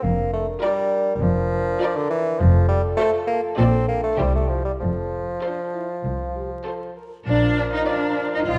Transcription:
0.03 0.50 F1 medium
0.03 0.51 F2 medium
0.03 0.33 A#3 medium
0.03 2.37 D4 medium
0.03 2.37 A#4 medium
0.33 0.47 A3 medium
0.62 1.14 G3 loud
0.62 1.07 F4 medium
0.62 1.07 A#4 medium
0.62 1.08 D5 medium
1.15 1.24 G3 medium
1.21 1.68 F1 medium
1.21 1.69 F2 medium
1.21 1.97 F3 loud
1.80 2.25 F4 medium
1.80 2.26 A#4 medium
1.80 2.26 D5 medium
1.96 2.09 D3 medium
2.10 2.41 E3 loud
2.39 2.87 F1 medium
2.39 2.87 F2 loud
2.39 2.68 F3 medium
2.39 3.57 F4 medium
2.39 4.20 A4 medium
2.68 2.82 G3 loud
2.97 3.11 A3 loud
2.97 3.44 F4 medium
2.97 3.44 A4 medium
2.97 3.44 C5 medium
3.27 3.41 A#3 loud
3.58 4.07 A#1 medium
3.58 4.07 A#2 medium
3.58 3.88 C4 loud
3.58 4.20 D4 medium
3.58 4.04 F4 medium
3.58 4.05 A4 medium
3.58 4.04 D5 medium
3.88 4.03 A#3 medium
4.04 4.20 A3 medium
4.18 4.68 C2 medium
4.18 4.68 C3 medium
4.18 4.34 G3 medium
4.18 4.65 E4 medium
4.18 4.80 E4 medium
4.18 4.65 G4 medium
4.18 4.80 G4 medium
4.18 4.66 C5 medium
4.35 4.50 A3 medium
4.48 4.65 F3 medium
4.65 4.72 G3 medium
4.80 5.31 F1 medium
4.80 5.31 F2 medium
4.80 6.92 F3 medium
4.80 5.27 F4 soft
4.80 5.27 A4 medium
5.42 5.58 D4 medium
5.42 5.89 F4 soft
5.42 5.88 A4 medium
5.42 5.90 C5 medium
5.73 5.87 E4 soft
6.04 6.53 C2 medium
6.04 6.35 F4 medium
6.36 6.50 G4 medium
6.65 7.12 F4 soft
6.65 7.11 A4 soft
6.65 6.80 A4 medium
6.65 7.12 C5 soft
6.97 7.11 A#4 medium
7.26 7.75 A#1 medium
7.26 8.44 F3 medium
7.26 7.70 D4 medium
7.26 8.44 D4 medium
7.26 8.44 F4 medium
7.26 8.44 A#4 medium
7.26 7.70 D5 medium
7.26 8.50 F5 medium
7.26 8.43 A#5 medium
7.73 7.88 D#4 medium
7.73 7.87 D#5 medium
7.87 8.32 D4 medium
7.87 8.32 D5 medium
7.87 8.30 D5 medium
7.87 8.33 D5 medium
8.33 8.40 D#4 medium
8.33 8.47 D#5 medium
8.46 8.59 A#1 medium
8.46 8.59 G3 medium
8.46 8.59 C4 medium
8.46 8.59 D#4 medium
8.46 8.59 F4 medium
8.46 8.59 C5 medium
8.46 8.59 D#5 medium
8.46 8.59 F5 medium
8.46 8.59 G5 medium

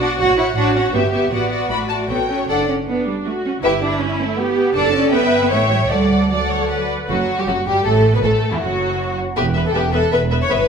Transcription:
0.00 0.13 B1 medium
0.00 0.09 D4 medium
0.00 0.55 F#4 medium
0.00 0.19 F#4 soft
0.00 0.19 D5 soft
0.00 0.19 F#5 soft
0.19 0.50 A1 medium
0.19 0.38 F#4 medium
0.19 0.37 C#5 medium
0.19 0.36 F#5 medium
0.37 0.45 E4 medium
0.37 0.56 F#4 soft
0.37 0.56 C#5 soft
0.37 0.55 F#5 soft
0.56 0.87 A1 medium
0.56 0.75 D4 medium
0.56 0.93 F#4 medium
0.56 0.75 F#4 soft
0.56 0.75 C#5 soft
0.56 0.74 F#5 soft
0.75 0.83 C#4 medium
0.75 0.94 F#4 soft
0.75 0.94 C#5 soft
0.75 0.93 F#5 soft
0.93 1.25 G1 medium
0.93 1.02 B3 medium
0.93 1.32 G4 medium
0.93 1.12 G4 soft
0.93 1.12 B4 soft
0.93 1.12 E5 soft
1.13 1.31 B3 medium
1.13 1.32 G4 soft
1.13 1.32 B4 soft
1.13 1.32 E5 soft
1.31 1.65 A1 medium
1.31 1.70 B3 medium
1.31 2.27 F#4 soft
1.31 1.51 F#4 soft
1.31 1.50 D5 soft
1.31 1.50 F#5 soft
1.51 1.69 F#4 soft
1.51 1.69 D5 soft
1.51 1.71 F#5 soft
1.70 2.03 A1 soft
1.70 2.10 A3 soft
1.70 1.89 F#4 soft
1.70 1.90 D5 soft
1.70 1.78 B5 medium
1.89 2.09 F#4 soft
1.89 2.10 D5 soft
1.89 1.97 A5 soft
2.08 2.42 A1 soft
2.08 2.18 B3 medium
2.08 2.29 A4 soft
2.08 2.28 C#5 soft
2.08 2.47 G5 soft
2.29 2.48 C#4 medium
2.29 2.47 A4 soft
2.29 2.49 C#5 soft
2.48 2.81 F#1 medium
2.48 2.68 D4 medium
2.48 2.67 A4 soft
2.48 2.67 D5 soft
2.48 2.67 F#5 soft
2.69 2.76 C#4 medium
2.87 3.06 B3 medium
2.87 3.23 D4 soft
3.07 3.15 G3 medium
3.25 3.33 A3 medium
3.25 3.63 F#4 soft
3.45 3.52 C#4 medium
3.62 3.94 G1 medium
3.62 4.37 E4 medium
3.62 3.71 E4 medium
3.62 3.81 G4 soft
3.62 3.80 B4 medium
3.62 3.81 E5 soft
3.82 4.00 D4 medium
4.01 4.20 C#4 medium
4.20 4.39 A3 medium
4.38 4.75 B3 medium
4.38 4.75 G4 medium
4.74 5.10 F#1 medium
4.74 4.93 D4 medium
4.74 5.09 A4 medium
4.74 5.11 A4 medium
4.74 5.09 D5 medium
4.74 5.10 A5 medium
4.94 5.12 C#4 medium
5.12 5.50 G1 medium
5.12 5.41 B3 medium
5.12 5.50 B4 medium
5.12 5.51 B4 medium
5.12 5.50 E5 medium
5.12 5.49 G5 medium
5.42 5.45 B3 medium
5.50 5.90 A1 medium
5.50 5.59 A3 medium
5.50 5.90 C#5 medium
5.50 5.91 C#5 soft
5.50 5.90 E5 soft
5.50 5.90 G5 soft
5.70 5.78 G3 medium
5.90 6.90 D2 soft
5.90 6.30 G3 medium
5.90 6.31 A4 soft
5.90 6.26 D5 soft
5.90 6.31 D5 soft
5.90 6.29 F#5 soft
6.30 6.90 F#3 soft
6.30 6.90 A4 soft
6.30 6.49 D5 soft
6.30 6.90 D5 soft
6.30 6.89 F#5 soft
6.50 6.70 C#5 soft
6.70 7.09 B4 soft
7.09 7.17 F#1 medium
7.09 7.18 F#2 medium
7.09 7.36 F#3 soft
7.09 7.17 F#4 soft
7.09 7.36 F#4 medium
7.38 7.42 G2 medium
7.38 7.42 G3 soft
7.38 7.42 G4 soft
7.38 7.48 G4 medium
7.47 7.55 F#1 medium
7.47 7.55 F#2 medium
7.47 7.55 F#3 medium
7.47 7.55 F#4 medium
7.47 7.67 F#4 medium
7.66 7.74 G1 medium
7.66 7.74 G2 medium
7.66 7.85 G3 medium
7.66 7.85 G4 medium
7.66 7.86 G4 medium
7.84 8.13 A1 medium
7.84 8.13 A2 medium
7.84 8.13 A3 medium
7.84 7.93 A4 medium
7.84 8.14 A4 medium
8.14 8.18 B2 medium
8.14 8.23 B3 medium
8.14 8.23 B4 soft
8.14 8.18 B4 medium
8.23 8.31 A1 medium
8.23 8.31 A2 medium
8.23 8.52 A3 medium
8.23 8.52 A4 medium
8.23 8.32 A4 medium
8.51 8.55 E2 medium
8.51 8.56 E3 soft
8.51 8.55 E4 soft
8.51 8.61 E4 soft
8.59 9.17 F#1 soft
8.59 9.17 F#2 soft
8.59 9.17 F#3 soft
8.59 9.16 F#4 medium
8.59 9.18 F#4 soft
9.36 9.70 E1 medium
9.36 9.70 E2 soft
9.36 9.44 B3 soft
9.36 9.44 G4 medium
9.36 9.44 B4 soft
9.36 9.44 E5 soft
9.55 9.64 B3 soft
9.55 9.64 B4 soft
9.55 9.62 E5 soft
9.65 9.75 A4 medium
9.74 10.08 E1 medium
9.74 10.07 E2 medium
9.74 9.82 B3 soft
9.74 9.93 G4 medium
9.74 9.82 B4 soft
9.74 9.82 E5 soft
9.93 10.01 B3 soft
9.93 10.12 A4 medium
9.93 10.01 B4 soft
9.93 10.00 E5 soft
10.11 10.45 E1 medium
10.11 10.45 E2 medium
10.11 10.20 B3 soft
10.11 10.20 B4 medium
10.11 10.20 B4 soft
10.11 10.19 E5 soft
10.31 10.39 B3 soft
10.31 10.39 B4 soft
10.31 10.38 E5 soft
10.42 10.50 C#5 medium
10.49 10.68 G1 medium
10.49 10.68 G2 medium
10.49 10.57 B3 medium
10.49 10.57 B4 soft
10.49 10.68 B4 medium
10.49 10.58 E5 soft

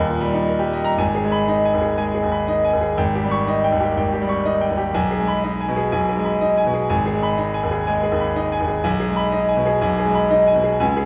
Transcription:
0.00 0.96 D#2 medium
0.08 0.29 A#2 medium
0.21 0.42 G3 medium
0.34 0.55 D#4 medium
0.47 0.68 A#4 medium
0.59 0.80 G4 medium
0.73 0.94 D#5 medium
0.84 0.98 A#5 loud
0.98 1.95 G#1 medium
0.98 1.25 G#5 medium
1.15 1.42 G#4 medium
1.24 1.64 G#3 medium
1.32 1.59 B5 loud
1.48 1.88 D#4 medium
1.48 1.75 D#5 medium
1.65 1.92 G#5 medium
1.74 2.13 D#2 medium
1.81 2.08 G#4 medium
1.98 2.38 G#3 medium
1.98 2.25 G#5 medium
2.15 2.41 G#4 medium
2.23 2.63 D#2 medium
2.32 2.58 B5 medium
2.48 2.87 D#4 medium
2.48 2.74 D#5 medium
2.65 2.91 G#5 medium
2.73 2.98 D#2 medium
2.81 2.98 G#4 medium
2.97 3.94 G#1 medium
2.97 3.24 G5 medium
3.15 3.41 G4 medium
3.23 3.63 G3 medium
3.31 3.58 C#6 loud
3.47 3.87 D#4 medium
3.47 3.74 D#5 medium
3.64 3.91 G5 medium
3.72 4.12 D#2 medium
3.80 4.07 G4 medium
3.97 4.92 G#1 medium
3.97 4.23 G5 medium
4.13 4.40 G4 medium
4.22 4.61 G3 medium
4.29 4.55 C#6 medium
4.45 4.85 D#4 medium
4.45 4.72 D#5 medium
4.61 4.88 G5 medium
4.70 4.94 D#2 medium
4.78 4.94 G4 medium
4.94 5.89 B1 medium
4.94 5.21 G#5 medium
5.11 5.37 G#4 medium
5.19 5.58 G#3 medium
5.28 5.53 B5 medium
5.44 5.83 D#4 medium
5.44 5.70 D#5 medium
5.61 5.86 G#5 medium
5.68 6.07 B2 medium
5.76 6.02 G#4 medium
5.92 6.87 B1 medium
5.92 6.18 G#5 medium
6.09 6.35 G#4 medium
6.17 6.56 G#3 medium
6.25 6.51 B5 medium
6.41 6.80 D#4 medium
6.41 6.67 D#5 medium
6.57 6.83 G#5 medium
6.66 6.90 B2 medium
6.74 6.90 G#4 medium
6.90 7.84 G#1 medium
6.90 7.16 G#5 medium
7.06 7.32 G#4 medium
7.14 7.53 G#3 medium
7.22 7.48 B5 loud
7.38 7.77 D#4 medium
7.38 7.64 D#5 medium
7.54 7.80 G#5 medium
7.63 8.02 D#2 medium
7.71 7.97 G#4 medium
7.87 8.26 G#3 medium
7.87 8.13 G#5 medium
8.03 8.29 G#4 medium
8.12 8.50 D#2 medium
8.20 8.46 B5 medium
8.36 8.75 D#4 medium
8.36 8.62 D#5 medium
8.52 8.78 G#5 medium
8.60 8.85 D#2 medium
8.68 8.84 G#4 medium
8.84 9.79 B1 medium
8.84 9.10 G#5 medium
9.00 9.26 G#4 medium
9.09 9.48 G#3 medium
9.16 9.43 B5 loud
9.32 9.72 D#4 medium
9.32 9.59 D#5 medium
9.48 9.75 G#5 medium
9.57 9.97 B2 medium
9.65 9.92 G#4 medium
9.81 10.77 B1 medium
9.81 10.08 G#5 medium
9.98 10.24 G#4 medium
10.06 10.45 G#3 medium
10.14 10.41 B5 medium
10.31 10.70 D#4 medium
10.31 10.57 D#5 medium
10.47 10.74 G#5 medium
10.55 10.80 B2 medium
10.64 10.80 G#4 medium
10.80 11.05 C#2 medium
10.80 11.05 G#5 medium
10.97 11.05 G#4 medium

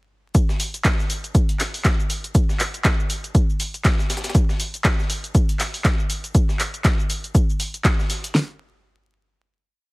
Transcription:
0.35 kick loud
0.35 closed hi-hat medium
0.35 cabasa soft
0.35 shaker medium
0.49 snare medium
0.49 cabasa soft
0.60 open hi-hat loud
0.60 cabasa medium
0.60 shaker medium
0.74 closed hi-hat medium
0.74 cabasa soft
0.85 kick loud
0.85 snare loud
0.85 clap loud
0.85 closed hi-hat medium
0.85 cabasa soft
0.85 shaker medium
0.99 snare soft
0.99 cabasa soft
1.10 open hi-hat loud
1.10 cabasa medium
1.10 shaker medium
1.24 closed hi-hat medium
1.24 cabasa soft
1.35 kick loud
1.35 closed hi-hat medium
1.35 cabasa soft
1.35 shaker medium
1.49 closed hi-hat soft
1.49 cabasa soft
1.60 snare soft
1.60 clap medium
1.60 open hi-hat loud
1.60 cabasa medium
1.60 shaker medium
1.74 open hi-hat medium
1.74 cabasa soft
1.85 kick loud
1.85 snare loud
1.85 clap loud
1.85 closed hi-hat medium
1.85 cabasa soft
1.85 shaker medium
2.00 cabasa soft
2.10 open hi-hat loud
2.10 cabasa medium
2.10 shaker medium
2.24 closed hi-hat medium
2.24 cabasa soft
2.35 kick loud
2.35 closed hi-hat medium
2.35 cabasa soft
2.35 shaker medium
2.49 snare soft
2.49 cabasa soft
2.60 clap medium
2.60 open hi-hat loud
2.60 cabasa medium
2.60 shaker medium
2.74 closed hi-hat medium
2.74 cabasa soft
2.85 kick loud
2.85 snare loud
2.85 clap loud
2.85 closed hi-hat medium
2.85 cabasa soft
2.85 shaker medium
3.00 cabasa soft
3.10 open hi-hat loud
3.10 cabasa medium
3.10 shaker medium
3.24 closed hi-hat medium
3.24 cabasa soft
3.35 kick loud
3.35 closed hi-hat medium
3.35 cabasa soft
3.35 shaker medium
3.50 cabasa soft
3.60 open hi-hat loud
3.60 cabasa medium
3.60 shaker medium
3.74 closed hi-hat medium
3.74 cabasa soft
3.85 kick loud
3.85 snare loud
3.85 clap loud
3.85 closed hi-hat medium
3.85 cabasa soft
3.85 shaker medium
3.99 snare medium
3.99 cabasa soft
4.10 snare medium
4.10 open hi-hat loud
4.10 cabasa medium
4.10 shaker medium
4.17 snare medium
4.17 shaker medium
4.24 snare medium
4.24 closed hi-hat medium
4.24 cabasa soft
4.24 shaker medium
4.29 snare medium
4.29 shaker medium
4.35 kick loud
4.35 closed hi-hat medium
4.35 cabasa soft
4.35 shaker medium
4.49 snare medium
4.49 cabasa soft
4.60 open hi-hat loud
4.60 cabasa medium
4.60 shaker medium
4.74 closed hi-hat medium
4.74 cabasa soft
4.84 kick loud
4.84 snare loud
4.84 clap loud
4.84 closed hi-hat medium
4.84 cabasa soft
4.84 shaker medium
4.99 snare soft
4.99 cabasa soft
5.10 open hi-hat loud
5.10 cabasa medium
5.10 shaker medium
5.24 closed hi-hat medium
5.24 cabasa soft
5.35 kick loud
5.35 closed hi-hat medium
5.35 cabasa soft
5.35 shaker medium
5.49 closed hi-hat soft
5.49 cabasa soft
5.59 snare soft
5.59 clap medium
5.59 open hi-hat loud
5.59 cabasa medium
5.59 shaker medium
5.74 open hi-hat medium
5.74 cabasa soft
5.84 kick loud
5.84 snare loud
5.84 clap loud
5.84 closed hi-hat medium
5.84 cabasa soft
5.84 shaker medium
6.00 cabasa soft
6.10 open hi-hat loud
6.10 cabasa medium
6.10 shaker medium
6.24 closed hi-hat medium
6.24 cabasa soft
6.35 kick loud
6.35 closed hi-hat medium
6.35 cabasa soft
6.35 shaker medium
6.49 snare soft
6.49 cabasa soft
6.59 clap medium
6.59 open hi-hat loud
6.59 cabasa medium
6.59 shaker medium
6.74 closed hi-hat medium
6.74 cabasa soft
6.84 kick loud
6.84 snare loud
6.84 clap loud
6.84 closed hi-hat medium
6.84 cabasa soft
6.84 shaker medium
7.00 cabasa soft
7.10 open hi-hat loud
7.10 cabasa medium
7.10 shaker medium
7.24 closed hi-hat soft
7.24 cabasa soft
7.35 kick loud
7.35 closed hi-hat medium
7.35 cabasa soft
7.35 shaker medium
7.50 cabasa soft
7.60 open hi-hat loud
7.60 cabasa medium
7.60 shaker medium
7.74 closed hi-hat medium
7.74 cabasa soft
7.84 kick loud
7.84 snare loud
7.84 clap loud
7.84 closed hi-hat medium
7.84 cabasa soft
7.84 shaker medium
7.99 snare medium
7.99 cabasa soft
8.10 snare soft
8.10 open hi-hat loud
8.10 cabasa medium
8.10 shaker medium
8.24 closed hi-hat medium
8.24 closed hi-hat soft
8.24 cabasa soft
8.35 snare loud

